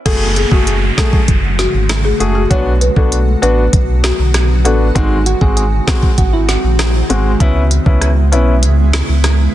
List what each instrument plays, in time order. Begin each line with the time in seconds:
0.06 sub bass F#1, ambient pad C#3 G#3 A3 F#4, grand piano A3 F#4 G#4, marimba A4, kick, closed hi-hat, crash, downlifter
0.36 marimba G#4, closed hi-hat
0.51 sub bass F#1, grand piano A3 F#4 G#4, marimba F#4, kick
0.67 closed hi-hat
0.97 grand piano A3 F#4 G#4, marimba A4, kick, cross-stick, snare, closed hi-hat
1.13 kick
1.28 sub bass F#1, kick, closed hi-hat
1.59 marimba F#4, snare, closed hi-hat
1.74 sub bass G#1
1.89 cross-stick, snare, closed hi-hat
2.05 marimba G#4
2.20 sub bass F#1, grand piano A3 F#4 G#4, closed hi-hat
2.35 marimba F#4
2.50 sub bass B1, ambient pad D3 F#3 B3 F#4, grand piano B3 D4 F#4, marimba C#5, kick, closed hi-hat
2.81 marimba B4, closed hi-hat
2.96 sub bass B1, grand piano B3 D4 F#4, marimba A4, kick
3.12 closed hi-hat
3.42 sub bass A1, grand piano B3 D4 F#4, marimba B4, closed hi-hat
3.73 sub bass B1, kick, closed hi-hat
4.04 marimba F#4, cross-stick, snare, closed hi-hat
4.19 sub bass B1
4.34 cross-stick, snare, closed hi-hat
4.65 sub bass A1, grand piano B3 D4 F#4, marimba A4, closed hi-hat
4.95 sub bass G#1, ambient pad D#3 G#3 C4, grand piano G#3 C4 F#4, soft synth lead D#4, kick, closed hi-hat
5.26 soft synth lead F#4, closed hi-hat
5.41 sub bass G#1, grand piano G#3 C4 F#4, soft synth lead G#4, kick
5.57 soft synth lead G#4, closed hi-hat
5.87 grand piano G#3 C4 F#4, kick, cross-stick, snare, closed hi-hat
6.03 kick
6.18 sub bass G#1, soft synth lead F#4, kick, closed hi-hat
6.33 soft synth lead E4
6.49 soft synth lead F#4, snare, closed hi-hat
6.64 sub bass A#1
6.79 cross-stick, snare, closed hi-hat
7.10 sub bass G#1, grand piano G#3 C4 F#4, closed hi-hat
7.40 sub bass C#2, ambient pad C#3 B3 E4, grand piano B3 C#4 E4, kick, closed hi-hat
7.71 closed hi-hat
7.86 sub bass C#2, grand piano B3 C#4 E4, kick
8.01 cross-stick, closed hi-hat
8.32 sub bass B1, grand piano B3 C#4 E4, closed hi-hat
8.63 sub bass C#2, closed hi-hat
8.93 cross-stick, snare, closed hi-hat
9.09 sub bass C#2
9.24 cross-stick, snare, closed hi-hat